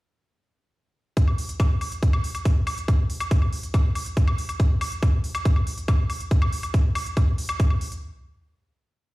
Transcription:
1.17 kick loud
1.17 closed hi-hat medium
1.28 high woodblock soft
1.38 open hi-hat loud
1.49 closed hi-hat medium
1.60 kick loud
1.60 closed hi-hat medium
1.60 high woodblock medium
1.81 open hi-hat medium
1.81 high woodblock soft
1.92 closed hi-hat medium
2.03 kick loud
2.03 closed hi-hat medium
2.13 high woodblock medium
2.24 open hi-hat loud
2.35 closed hi-hat medium
2.35 high woodblock soft
2.45 kick loud
2.45 closed hi-hat medium
2.67 open hi-hat medium
2.67 high woodblock medium
2.78 closed hi-hat medium
2.88 kick loud
2.88 closed hi-hat medium
2.88 high woodblock soft
3.10 open hi-hat loud
3.20 closed hi-hat medium
3.20 high woodblock medium
3.31 kick loud
3.31 closed hi-hat medium
3.42 high woodblock soft
3.53 open hi-hat medium
3.63 closed hi-hat medium
3.74 kick loud
3.74 closed hi-hat medium
3.74 high woodblock medium
3.95 open hi-hat loud
3.95 high woodblock soft
4.06 closed hi-hat medium
4.17 kick loud
4.17 closed hi-hat medium
4.28 high woodblock medium
4.38 open hi-hat medium
4.49 closed hi-hat medium
4.49 high woodblock soft
4.60 kick loud
4.60 closed hi-hat medium
4.81 open hi-hat loud
4.81 high woodblock medium
4.92 closed hi-hat medium
5.03 kick loud
5.03 closed hi-hat medium
5.03 high woodblock soft
5.24 open hi-hat loud
5.35 closed hi-hat medium
5.35 high woodblock medium
5.45 kick loud
5.45 closed hi-hat medium
5.56 high woodblock soft
5.67 open hi-hat loud
5.78 closed hi-hat medium
5.88 kick loud
5.88 closed hi-hat medium
5.88 high woodblock medium
6.10 open hi-hat loud
6.10 high woodblock soft
6.20 closed hi-hat medium
6.31 kick loud
6.31 closed hi-hat medium
6.42 high woodblock medium
6.53 open hi-hat loud
6.63 closed hi-hat medium
6.63 high woodblock soft
6.74 kick loud
6.74 closed hi-hat medium
6.95 open hi-hat loud
6.95 high woodblock medium
7.06 closed hi-hat medium
7.17 kick loud
7.17 closed hi-hat medium
7.17 high woodblock soft
7.38 open hi-hat loud
7.49 closed hi-hat medium
7.49 high woodblock medium
7.60 kick loud
7.60 closed hi-hat medium
7.70 high woodblock soft
7.81 open hi-hat loud
7.92 closed hi-hat medium

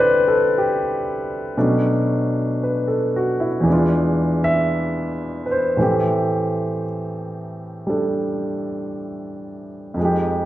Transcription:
0.00 1.53 C2 soft
0.00 1.54 C3 soft
0.00 1.55 D3 soft
0.00 1.56 B3 soft
0.00 1.56 C4 soft
0.00 1.57 D4 soft
0.00 1.57 E4 soft
0.00 0.58 G4 medium
0.00 1.57 B4 medium
0.00 1.57 C5 medium
0.00 1.57 D5 medium
0.28 0.47 A4 medium
0.58 1.56 G4 medium
1.57 3.67 B2 medium
1.57 3.68 F#3 soft
1.57 3.68 A3 soft
1.57 3.68 C#4 soft
1.57 3.68 D4 medium
2.63 3.12 B4 soft
2.88 3.33 A4 soft
3.16 3.48 F#4 soft
3.40 3.77 E4 soft
3.61 5.75 E2 medium
3.61 5.76 E3 soft
3.66 5.78 G#3 soft
3.70 5.80 D4 soft
3.70 5.81 F4 medium
4.44 5.43 E5 medium
5.46 5.49 B4 soft
5.51 6.83 C5 medium
5.77 9.96 A2 soft
5.77 9.97 E3 soft
5.77 9.97 A3 soft
5.77 9.98 C4 soft
5.82 9.98 G4 medium
7.87 9.97 G3 soft
7.87 9.98 D4 soft
7.87 9.98 A4 soft
9.94 10.45 F2 soft
9.94 10.45 F3 soft
9.99 10.45 G#3 soft
9.99 10.45 D#4 soft
10.05 10.45 G4 medium

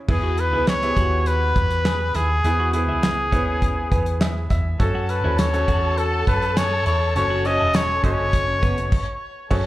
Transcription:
0.00 0.10 C#4 medium
0.00 0.09 E4 medium
0.00 0.09 G#4 medium
0.00 0.10 C#5 medium
0.08 0.52 E2 medium
0.08 0.93 E3 medium
0.08 0.44 B3 medium
0.08 0.44 E4 medium
0.08 0.44 G#4 medium
0.08 0.41 G#4 medium
0.08 0.44 B4 medium
0.08 kick loud
0.08 crash medium
0.23 0.37 F#4 medium
0.37 0.68 B4 medium
0.37 closed hi-hat medium
0.52 0.94 C#2 medium
0.52 0.77 B3 medium
0.52 0.67 E4 medium
0.52 0.77 E4 medium
0.52 0.77 G#4 medium
0.52 0.77 B4 medium
0.67 1.28 C#5 loud
0.67 snare loud
0.67 clap medium
0.67 closed hi-hat medium
0.82 1.78 B3 medium
0.82 1.78 E4 medium
0.82 0.89 G4 soft
0.82 1.78 B4 medium
0.82 closed hi-hat soft
0.89 1.81 G#4 medium
0.96 1.52 D#2 medium
0.96 1.53 F#4 medium
0.96 kick medium
0.96 closed hi-hat medium
1.26 2.17 B4 medium
1.26 closed hi-hat medium
1.56 2.11 E2 medium
1.56 kick medium
1.56 closed hi-hat medium
1.70 closed hi-hat medium
1.85 2.00 G#4 medium
1.85 snare loud
1.85 clap medium
1.85 closed hi-hat loud
2.14 2.42 D#2 medium
2.14 2.29 E4 medium
2.14 2.74 G#4 medium
2.14 snare soft
2.14 closed hi-hat medium
2.44 2.88 E2 loud
2.44 3.29 E3 medium
2.44 2.68 B3 medium
2.44 2.68 E4 medium
2.44 2.68 G#4 medium
2.44 2.69 B4 medium
2.44 closed hi-hat medium
2.60 2.73 F#4 medium
2.73 3.21 B3 medium
2.73 3.21 E4 medium
2.73 3.21 G#4 medium
2.73 4.47 G#4 medium
2.73 3.21 B4 medium
2.73 closed hi-hat medium
2.88 3.32 C#2 medium
2.88 3.03 E4 medium
3.03 snare loud
3.03 clap medium
3.03 closed hi-hat medium
3.32 3.87 D#2 medium
3.32 4.28 B3 medium
3.32 3.74 C#4 medium
3.32 4.28 E4 medium
3.32 4.28 G#4 medium
3.32 4.28 B4 medium
3.32 kick medium
3.32 closed hi-hat medium
3.62 kick medium
3.62 closed hi-hat medium
3.91 4.47 E2 loud
3.91 4.05 B3 medium
3.91 4.19 G#5 medium
3.91 kick medium
3.91 closed hi-hat medium
4.06 closed hi-hat medium
4.21 4.48 E5 medium
4.21 snare loud
4.21 clap medium
4.21 closed hi-hat medium
4.50 4.78 E2 medium
4.50 4.78 E5 medium
4.50 kick medium
4.50 snare soft
4.50 closed hi-hat medium
4.79 5.21 F#2 loud
4.79 5.15 C#4 medium
4.79 5.16 F#4 medium
4.79 5.16 A4 medium
4.79 8.88 A4 medium
4.79 5.11 A4 medium
4.79 5.16 C#5 medium
4.79 8.88 A5 medium
4.79 kick loud
4.79 closed hi-hat medium
4.95 5.09 F#4 medium
5.09 5.39 B4 medium
5.09 closed hi-hat medium
5.24 5.65 D#2 medium
5.24 5.48 C#4 medium
5.24 5.38 E4 medium
5.24 5.48 F#4 medium
5.24 5.48 A4 medium
5.24 5.48 C#5 medium
5.38 6.00 C#5 medium
5.38 snare loud
5.38 clap medium
5.38 closed hi-hat medium
5.38 tambourine medium
5.53 6.49 C#4 medium
5.53 6.49 F#4 medium
5.53 6.49 A4 medium
5.53 6.49 C#5 medium
5.53 closed hi-hat medium
5.68 6.23 E2 medium
5.68 6.24 F#4 medium
5.68 kick medium
5.68 closed hi-hat medium
5.98 6.27 A4 medium
5.98 closed hi-hat medium
6.27 6.82 F#2 loud
6.27 6.59 B4 medium
6.27 kick loud
6.27 closed hi-hat medium
6.42 closed hi-hat soft
6.56 6.70 G#4 medium
6.56 6.87 C#5 loud
6.56 snare loud
6.56 clap loud
6.56 closed hi-hat loud
6.56 tambourine medium
6.86 7.13 E2 medium
6.86 7.00 E4 medium
6.86 7.14 C#5 loud
6.86 closed hi-hat medium
7.15 7.59 F#1 medium
7.15 7.40 C#4 medium
7.15 7.40 F#4 medium
7.15 7.40 A4 medium
7.15 7.40 C#5 medium
7.15 7.47 C#5 loud
7.15 closed hi-hat medium
7.30 7.44 F#4 medium
7.45 7.93 C#4 medium
7.45 7.93 F#4 medium
7.45 7.93 A4 medium
7.45 7.93 C#5 medium
7.45 7.77 D#5 loud
7.45 closed hi-hat medium
7.59 8.00 E1 medium
7.59 7.74 E4 medium
7.74 8.04 C#5 loud
7.74 snare loud
7.74 clap medium
7.74 closed hi-hat medium
7.74 tambourine medium
8.04 8.59 F#1 medium
8.04 8.45 C#4 medium
8.04 8.92 C#4 medium
8.04 8.92 F#4 medium
8.04 8.92 A4 medium
8.04 9.18 C#5 loud
8.04 8.92 D#5 medium
8.04 kick medium
8.04 closed hi-hat medium
8.33 kick medium
8.33 closed hi-hat medium
8.62 8.90 F#1 loud
8.62 8.77 B3 medium
8.62 kick medium
8.62 closed hi-hat medium
8.78 closed hi-hat medium
8.92 kick loud
8.92 crash medium
9.51 9.66 F#2 loud
9.51 9.66 C#4 medium
9.51 9.66 F#4 medium
9.51 9.66 G#4 medium
9.51 9.66 A4 medium
9.51 9.66 C#5 loud
9.51 9.66 A5 medium
9.51 kick medium
9.51 crash medium

